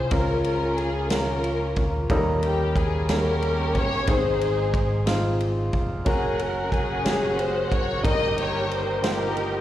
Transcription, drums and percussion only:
0.11 kick loud
0.11 ride medium
0.44 ride soft
0.78 ride soft
1.10 snare loud
1.10 ride medium
1.44 ride soft
1.76 kick loud
1.76 ride soft
2.10 kick loud
2.10 ride medium
2.43 ride soft
2.76 kick medium
2.76 ride soft
3.09 snare loud
3.09 ride medium
3.42 ride soft
3.75 kick medium
3.75 ride soft
4.07 kick loud
4.07 ride medium
4.41 ride soft
4.74 kick loud
4.74 ride soft
5.07 snare loud
5.07 ride medium
5.41 ride soft
5.73 kick medium
5.73 ride soft
6.06 kick loud
6.06 ride medium
6.39 ride soft
6.72 kick medium
6.72 ride soft
7.06 snare loud
7.06 ride medium
7.39 ride soft
7.72 kick medium
7.72 ride soft
8.05 kick loud
8.05 ride medium
8.38 ride medium
8.71 ride soft
9.04 snare loud
9.04 ride medium
9.37 ride soft

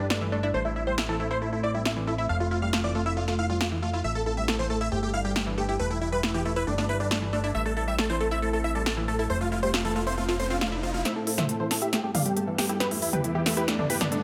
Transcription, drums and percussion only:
0.10 snare loud
0.98 snare loud
1.85 snare loud
2.73 snare loud
3.28 snare soft
3.61 snare loud
4.48 snare loud
5.36 snare loud
6.23 snare loud
6.78 snare soft
7.11 snare loud
7.99 snare loud
8.86 snare loud
9.74 snare loud
10.29 snare soft
10.61 snare loud
11.05 snare soft
11.05 closed hi-hat medium
11.27 open hi-hat loud
11.38 snare soft
11.38 closed hi-hat medium
11.38 mid tom medium
11.49 closed hi-hat medium
11.71 snare soft
11.71 open hi-hat loud
11.82 closed hi-hat medium
11.93 snare soft
11.93 closed hi-hat medium
12.15 open hi-hat loud
12.15 mid tom medium
12.26 closed hi-hat medium
12.37 closed hi-hat medium
12.58 snare medium
12.58 open hi-hat loud
12.69 closed hi-hat medium
12.80 snare medium
12.80 closed hi-hat medium
12.91 open hi-hat medium
13.02 open hi-hat loud
13.13 closed hi-hat medium
13.13 mid tom medium
13.24 closed hi-hat medium
13.46 snare medium
13.46 open hi-hat loud
13.57 closed hi-hat medium
13.68 snare medium
13.68 closed hi-hat medium
13.79 mid tom medium
13.90 open hi-hat loud
14.01 snare medium
14.01 closed hi-hat medium
14.01 mid tom medium
14.12 closed hi-hat medium

